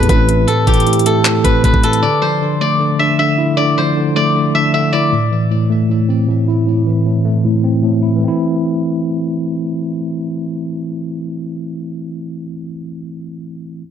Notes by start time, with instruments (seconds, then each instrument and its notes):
Already playing: tine electric piano A2 E3 A3 C4, guzheng G4 A4 D5 E5
0.03 closed hi-hat
0.09 808-style bass A1, tine electric piano A2, guzheng B4, kick, closed hi-hat
0.29 tine electric piano E4, closed hi-hat
0.47 tine electric piano A2, guzheng A4, closed hi-hat
0.67 tine electric piano E3, guzheng G4, kick, closed hi-hat
0.74 closed hi-hat
0.80 closed hi-hat
0.87 tine electric piano A2, closed hi-hat
0.93 closed hi-hat
0.99 closed hi-hat
1.06 tine electric piano A3, guzheng A4, closed hi-hat
1.25 tine electric piano A2, clap, closed hi-hat
1.44 tine electric piano C4, guzheng B4, kick, closed hi-hat
1.64 tine electric piano A2, guzheng B4, kick, closed hi-hat
1.74 kick
1.83 tine electric piano E4, guzheng A4, closed hi-hat
1.93 closed hi-hat
2.03 tine electric piano D3, guzheng D5
2.22 tine electric piano F3, guzheng C5
2.42 tine electric piano D3
2.61 tine electric piano A3, guzheng D5
2.80 tine electric piano D3
2.99 tine electric piano D4, guzheng E5
3.19 tine electric piano D3, guzheng E5
3.38 tine electric piano E4
3.57 tine electric piano D3, guzheng D5
3.77 tine electric piano F3, guzheng C5
3.97 tine electric piano D3
4.16 tine electric piano A3, guzheng D5
4.35 tine electric piano D3
4.54 tine electric piano D4, guzheng E5
4.74 tine electric piano D3, guzheng E5
4.93 tine electric piano E4, guzheng D5
5.13 tine electric piano A2
5.31 tine electric piano E3
5.51 tine electric piano A2
5.70 tine electric piano A3
5.90 tine electric piano A2
6.09 tine electric piano C4
6.29 tine electric piano A2
6.48 tine electric piano E4
6.67 tine electric piano A2
6.87 tine electric piano E3
7.06 tine electric piano A2
7.25 tine electric piano A3
7.45 tine electric piano A2
7.64 tine electric piano C4
7.83 tine electric piano A2
8.03 tine electric piano E4
8.16 tine electric piano E3
8.20 tine electric piano A3 C4
8.28 tine electric piano E4